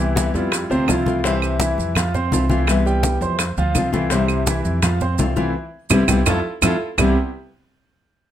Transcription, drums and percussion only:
0.16 high bongo, high conga, maracas
0.34 high bongo, high conga, maracas
0.52 high bongo, high conga, claves, maracas
0.71 high conga, maracas
0.88 high bongo, low bongo, high conga, claves, maracas
1.06 high bongo, high conga, maracas
1.24 high bongo, high conga, maracas
1.42 high bongo, high conga, claves, maracas
1.60 high bongo, high conga, maracas
1.78 high bongo, high conga, maracas
1.95 high bongo, high conga, low conga, claves, maracas
2.14 high conga, low conga, maracas
2.32 high bongo, low bongo, high conga, maracas
2.49 high bongo, high conga, maracas
2.67 high bongo, high conga, claves, maracas
2.86 high bongo, high conga, maracas
3.03 high bongo, high conga, maracas
3.21 high bongo, high conga, maracas
3.39 high bongo, high conga, claves, maracas
3.57 high conga, maracas
3.75 high bongo, low bongo, high conga, claves, maracas
3.93 high bongo, high conga, maracas
4.10 high bongo, high conga, maracas
4.28 high bongo, high conga, claves, maracas
4.47 high bongo, high conga, maracas
4.65 high bongo, high conga, maracas
4.82 high bongo, high conga, low conga, claves, maracas
5.00 high conga, low conga, maracas
5.18 high bongo, low bongo, high conga, maracas
5.36 high bongo, high conga, maracas
5.90 low bongo, low conga, claves, maracas
6.08 low bongo, low conga, claves, maracas
6.26 low bongo, low conga, claves, maracas
6.62 low bongo, low conga, claves, maracas
6.98 low bongo, low conga, claves, maracas

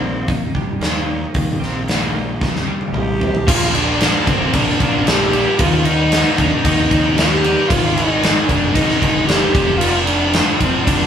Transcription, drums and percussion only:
0.28 kick, open hi-hat
0.55 kick
0.81 snare, open hi-hat
1.34 kick, open hi-hat
1.63 snare
1.88 snare, open hi-hat
2.41 kick, snare
2.56 snare
2.81 high tom
2.94 mid tom
3.21 floor tom
3.35 floor tom
3.48 kick, crash
3.75 crash
4.00 snare, crash
4.27 kick, crash
4.53 kick, crash
4.69 snare
4.80 kick, crash
5.07 snare, crash
5.33 crash
5.59 kick, crash
5.85 crash
6.12 snare, crash
6.38 kick, crash
6.65 kick, crash
6.91 kick, crash
7.18 snare, crash
7.44 crash
7.70 kick, crash
7.97 crash
8.23 snare, crash
8.49 kick, crash
8.75 kick, crash
8.90 snare
9.02 kick, crash
9.29 snare, crash
9.55 kick, crash
9.81 crash
10.07 crash
10.33 snare, crash
10.60 kick, crash
10.87 kick, crash

